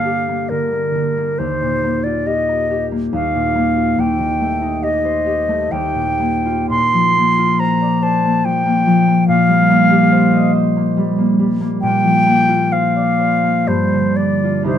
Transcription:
0.00 1.42 G2 soft
0.00 0.50 D3 soft
0.00 0.27 A#3 soft
0.00 1.42 D4 soft
0.00 1.20 F4 soft
0.00 1.42 A4 soft
0.00 0.96 D5 soft
0.00 0.51 F5 medium
0.05 2.25 G4 soft
0.28 0.71 A#3 soft
0.49 0.93 D3 soft
0.49 1.40 A#4 soft
0.72 1.16 A#3 soft
0.95 1.42 D3 soft
1.17 1.82 A#3 soft
1.38 3.11 D#2 soft
1.38 2.05 C5 medium
1.62 3.17 A#2 soft
1.83 2.90 A#3 soft
2.04 3.76 F4 soft
2.04 2.28 D5 soft
2.26 2.69 G4 soft
2.26 2.86 D#5 medium
2.49 4.03 A#4 soft
2.70 3.17 G4 soft
2.92 3.54 A#3 soft
3.13 3.97 D#2 soft
3.13 4.01 F5 medium
3.34 4.02 A#2 soft
3.55 4.02 A#3 soft
3.77 4.02 F4 soft
3.98 5.70 D#2 soft
3.98 4.85 G5 medium
4.19 5.74 D#3 soft
4.41 5.47 A3 soft
4.61 6.73 D#4 soft
4.83 5.25 G4 soft
4.83 5.73 D#5 medium
5.05 5.75 C5 soft
5.26 6.73 G4 soft
5.48 5.75 A3 soft
5.72 6.74 D#2 soft
5.72 6.69 G5 medium
5.95 6.68 A#2 soft
6.20 7.16 A#3 soft
6.45 7.37 F4 soft
6.70 9.27 A#2 soft
6.70 7.61 C6 medium
6.94 8.44 F3 soft
7.17 8.22 A#3 soft
7.38 11.28 F4 soft
7.60 8.01 C5 soft
7.60 8.04 A#5 medium
7.81 9.31 D5 soft
8.02 10.11 C5 soft
8.02 8.46 A5 medium
8.24 8.65 A#3 soft
8.45 8.86 F3 soft
8.45 9.28 G5 medium
8.66 9.07 A#3 soft
8.87 12.03 F3 soft
9.08 9.69 A#3 soft
9.28 11.81 A#2 soft
9.28 10.52 F5 medium
9.48 10.96 G3 soft
9.70 10.75 A#3 soft
9.91 13.81 G4 soft
10.12 10.54 C5 soft
10.33 11.85 D#5 soft
10.55 12.71 C5 soft
10.76 11.17 A#3 soft
10.97 11.38 G3 soft
11.18 11.59 A#3 soft
11.39 14.78 G3 soft
11.61 12.25 A#3 soft
11.82 13.71 A#2 medium
11.82 12.74 G5 medium
12.04 14.71 F3 soft
12.26 13.42 A#3 soft
12.49 14.43 F4 soft
12.72 13.18 C5 soft
12.72 13.69 F5 medium
12.96 14.78 D5 soft
13.19 14.65 C5 soft
13.44 13.71 A#3 soft
13.67 14.71 G2 soft
13.67 14.18 C5 medium
13.93 14.72 D3 soft
14.16 14.63 D4 soft
14.16 14.66 D5 medium
14.44 14.72 F4 soft
14.63 14.78 C2 soft
14.63 14.78 D4 soft
14.63 14.78 D#4 soft
14.63 14.78 G4 soft
14.63 14.78 C5 soft
14.67 14.78 C5 medium

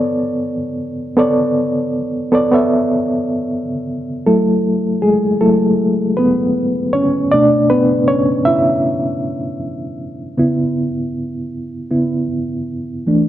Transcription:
0.00 1.17 B3 medium
0.00 1.17 A4 medium
0.00 1.19 C#5 medium
0.00 1.19 D5 loud
1.17 2.00 B3 medium
1.17 2.01 A4 medium
1.17 2.01 C#5 medium
1.17 2.02 D5 medium
2.32 2.46 B3 medium
2.32 2.47 A4 medium
2.32 2.47 C#5 medium
2.32 2.48 D5 medium
2.52 3.63 B3 medium
2.52 3.63 A4 medium
2.52 3.63 C#5 medium
2.52 3.64 E5 medium
4.26 5.40 F#3 medium
4.26 4.99 A3 medium
4.26 5.40 E4 medium
4.26 5.04 A4 medium
5.02 5.38 G#3 medium
5.02 5.41 G#4 medium
5.41 5.75 F#3 soft
5.41 6.14 A3 medium
5.41 5.75 E4 soft
5.41 6.19 A4 medium
6.17 6.90 B3 medium
6.17 6.96 B4 medium
6.93 7.30 C#4 medium
6.93 7.33 C#5 medium
7.32 7.83 B2 soft
7.32 7.83 A3 soft
7.32 7.68 D4 medium
7.32 7.71 D5 loud
7.70 7.88 B3 medium
7.70 7.87 B4 medium
8.08 8.27 C#4 medium
8.08 8.25 C#5 medium
8.45 9.58 E4 medium
8.45 9.57 E5 medium
10.37 10.89 C#3 medium
10.37 10.89 B3 soft
10.37 10.90 E4 medium
11.91 12.26 C#3 soft
11.91 12.26 B3 soft
11.91 12.26 E4 soft
13.07 13.28 E3 medium
13.07 13.28 A3 soft
13.07 13.28 D4 medium

